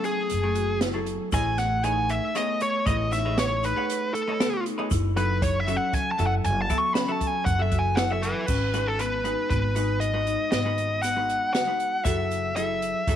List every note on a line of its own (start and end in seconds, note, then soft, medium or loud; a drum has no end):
0.00 0.37 F#3 medium
0.00 0.38 A3 medium
0.00 0.38 E4 medium
0.00 0.38 G#4 medium
0.00 closed hi-hat medium
0.04 0.50 A3 medium
0.04 0.78 G#4 medium
0.04 shaker soft
0.30 1.16 F#1 medium
0.30 closed hi-hat medium
0.43 0.89 F#3 medium
0.43 0.89 A3 medium
0.43 0.89 E4 medium
0.43 0.89 G#4 medium
0.55 0.79 F#4 medium
0.55 closed hi-hat medium
0.81 1.28 E4 medium
0.81 snare loud
0.81 closed hi-hat medium
0.93 1.28 F#3 medium
0.93 1.28 E4 medium
0.93 1.29 G#4 medium
0.93 1.29 A4 medium
1.06 closed hi-hat medium
1.32 2.17 A1 loud
1.32 1.78 A3 medium
1.32 1.79 E4 medium
1.32 1.78 G#4 medium
1.32 1.79 B4 medium
1.32 1.79 C#5 medium
1.32 1.79 D#5 medium
1.32 1.59 G#5 loud
1.32 kick medium
1.32 closed hi-hat medium
1.32 shaker medium
1.58 1.84 F#5 loud
1.58 snare soft
1.58 closed hi-hat medium
1.58 shaker soft
1.84 2.30 A3 medium
1.84 2.30 D#4 medium
1.84 2.29 G#4 medium
1.84 2.30 B4 medium
1.84 2.30 C#5 medium
1.84 2.30 D#5 medium
1.84 2.11 G#5 loud
1.84 closed hi-hat medium
2.09 2.36 E5 medium
2.09 closed hi-hat medium
2.35 2.81 A3 medium
2.35 2.81 B3 medium
2.35 2.81 G#4 medium
2.35 2.81 B4 medium
2.35 2.81 C#5 medium
2.35 2.81 D#5 medium
2.35 2.62 D#5 medium
2.35 snare soft
2.35 closed hi-hat medium
2.61 2.86 C#5 medium
2.61 closed hi-hat medium
2.86 3.71 A1 medium
2.86 3.20 A3 medium
2.86 3.10 E4 medium
2.86 3.21 G#4 medium
2.86 3.21 B4 medium
2.86 3.21 C#5 medium
2.86 3.12 D#5 medium
2.86 3.21 D#5 medium
2.86 kick loud
2.86 closed hi-hat medium
3.12 3.58 D#4 medium
3.12 3.36 E5 medium
3.12 snare soft
3.12 closed hi-hat medium
3.12 shaker soft
3.25 3.71 A3 medium
3.25 3.71 G#4 medium
3.25 3.71 B4 medium
3.25 3.71 C#5 medium
3.25 3.71 D#5 medium
3.38 3.65 C#5 medium
3.38 snare loud
3.38 closed hi-hat medium
3.63 4.09 D#4 medium
3.63 4.12 B4 medium
3.63 closed hi-hat medium
3.63 shaker soft
3.76 4.22 A3 medium
3.76 4.22 G#4 medium
3.76 4.22 B4 medium
3.76 4.22 C#5 medium
3.76 4.22 F#5 medium
3.90 closed hi-hat medium
4.14 4.62 A4 medium
4.14 closed hi-hat medium
4.28 4.73 A3 medium
4.28 4.73 A4 medium
4.28 4.73 B4 medium
4.28 4.73 C#5 medium
4.28 4.73 D#5 medium
4.40 4.63 B3 medium
4.40 snare loud
4.40 closed hi-hat medium
4.66 4.89 D#4 medium
4.66 closed hi-hat medium
4.78 4.91 A3 medium
4.78 4.91 G#4 medium
4.78 4.91 B4 medium
4.78 4.91 C#5 medium
4.78 4.91 D#5 loud
4.91 5.76 F#1 medium
4.91 5.14 E4 loud
4.91 kick loud
4.91 closed hi-hat medium
4.91 shaker medium
5.17 5.62 F#3 medium
5.17 5.63 D#4 medium
5.17 5.62 E4 medium
5.17 5.62 F#4 medium
5.17 5.62 A4 medium
5.17 5.43 B4 medium
5.17 closed hi-hat medium
5.42 5.60 C#5 medium
5.42 kick loud
5.42 closed hi-hat medium
5.60 5.77 E5 medium
5.67 6.13 F#3 medium
5.67 6.14 C#4 medium
5.67 6.13 F#4 medium
5.67 6.13 A4 medium
5.67 6.13 E5 medium
5.67 closed hi-hat medium
5.67 shaker soft
5.76 5.94 F#5 medium
5.93 6.11 G#5 medium
5.93 kick medium
5.93 closed hi-hat medium
6.11 6.26 A5 medium
6.18 6.40 F#1 loud
6.18 6.64 F#3 medium
6.18 6.65 E4 medium
6.18 6.64 F#4 medium
6.18 6.64 A4 medium
6.18 6.64 E5 medium
6.18 closed hi-hat medium
6.27 6.32 F#5 loud
6.44 6.66 F#1 medium
6.44 6.61 G#5 loud
6.44 closed hi-hat medium
6.44 shaker soft
6.62 6.79 A5 loud
6.69 7.04 F#3 medium
6.69 6.93 B3 medium
6.69 7.04 F#4 medium
6.69 7.04 A4 medium
6.69 7.04 E5 medium
6.69 kick medium
6.69 closed hi-hat medium
6.69 shaker soft
6.78 6.94 C#6 loud
6.94 7.18 C#4 medium
6.94 7.12 B5 medium
6.94 snare loud
6.94 closed hi-hat medium
7.08 7.53 F#3 medium
7.08 7.53 F#4 medium
7.08 7.54 A4 medium
7.08 7.54 E5 medium
7.08 7.27 A5 medium
7.21 7.67 A4 medium
7.21 kick medium
7.21 closed hi-hat medium
7.27 7.46 G#5 medium
7.45 8.31 F#1 loud
7.45 7.62 F#5 loud
7.45 kick loud
7.45 closed hi-hat medium
7.59 8.04 F#3 medium
7.59 8.04 F#4 medium
7.59 8.05 A4 medium
7.59 8.05 E5 medium
7.59 7.80 E5 medium
7.72 7.95 F#4 medium
7.72 kick medium
7.72 closed hi-hat medium
7.79 7.97 G#5 loud
7.96 8.43 E4 medium
7.96 8.13 F#5 medium
7.96 snare loud
7.96 closed hi-hat medium
7.96 shaker soft
8.10 8.44 F#3 medium
8.10 8.44 F#4 medium
8.10 8.44 A4 medium
8.10 8.44 E5 medium
8.10 8.45 E5 medium
8.22 8.88 B4 medium
8.22 closed hi-hat medium
8.22 shaker soft
8.48 9.33 G#1 medium
8.48 8.94 C#4 medium
8.48 kick medium
8.48 crash medium
8.48 shaker soft
8.74 9.19 G#3 medium
8.74 9.19 D#4 medium
8.74 9.20 F#4 medium
8.74 9.20 B4 medium
8.74 closed hi-hat medium
8.74 shaker soft
8.87 9.00 A4 medium
8.99 9.23 B3 medium
8.99 9.49 B4 medium
8.99 closed hi-hat medium
9.24 9.70 G#3 medium
9.24 9.48 D#4 medium
9.24 9.70 D#4 medium
9.24 9.70 F#4 medium
9.24 9.70 B4 medium
9.24 closed hi-hat medium
9.50 10.35 G#1 medium
9.50 9.74 B3 medium
9.50 9.98 B4 medium
9.50 kick medium
9.50 closed hi-hat medium
9.76 10.10 G#3 medium
9.76 10.10 D#4 medium
9.76 10.22 D#4 medium
9.76 10.10 F#4 medium
9.76 10.10 B4 medium
9.76 closed hi-hat medium
9.76 shaker soft
10.00 10.50 D#5 medium
10.00 closed hi-hat medium
10.14 10.59 G#3 medium
10.14 10.60 D#4 medium
10.14 10.60 F#4 medium
10.14 10.60 B4 medium
10.27 10.50 D#4 medium
10.27 closed hi-hat medium
10.51 11.37 G#1 medium
10.51 10.99 B3 medium
10.51 11.02 D#5 medium
10.51 snare loud
10.51 closed hi-hat medium
10.65 11.11 G#3 medium
10.65 11.11 D#4 medium
10.65 11.11 F#4 medium
10.65 11.11 B4 medium
10.78 closed hi-hat medium
11.03 11.50 B3 medium
11.03 11.51 F#5 medium
11.03 snare soft
11.03 closed hi-hat medium
11.03 shaker medium
11.16 11.62 G#3 medium
11.16 11.62 D#4 medium
11.16 11.62 F#4 medium
11.16 11.62 B4 medium
11.29 closed hi-hat medium
11.54 12.01 F#4 medium
11.54 12.04 F#5 medium
11.54 snare loud
11.54 closed hi-hat medium
11.54 shaker soft
11.67 12.01 G#3 medium
11.67 12.01 D#4 soft
11.67 12.02 F#4 medium
11.67 12.02 B4 medium
11.80 closed hi-hat medium
12.05 12.90 F#1 medium
12.05 12.51 F#3 medium
12.05 12.51 E4 medium
12.05 12.51 F#4 medium
12.05 12.51 G#4 medium
12.05 12.51 A4 medium
12.05 12.55 E5 medium
12.05 kick loud
12.05 closed hi-hat medium
12.05 shaker medium
12.31 closed hi-hat medium
12.31 shaker soft
12.56 13.02 F#3 medium
12.56 13.02 E4 medium
12.56 13.02 G#4 medium
12.56 13.02 A4 medium
12.56 13.16 E5 medium
12.56 closed hi-hat medium
12.82 closed hi-hat medium
13.07 13.16 F#1 medium
13.07 13.16 F#3 medium
13.07 13.16 E4 medium
13.07 13.16 F#4 medium
13.07 13.16 G#4 medium
13.07 13.16 A4 medium
13.07 kick loud
13.07 closed hi-hat medium